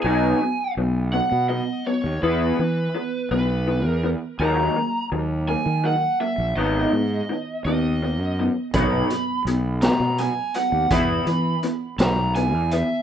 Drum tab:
HH |------|------|------|------|
SD |------|------|------|------|
BD |------|------|------|------|

HH |xxxxxx|xxxxxx|
SD |---o--|---o--|
BD |o-----|o-----|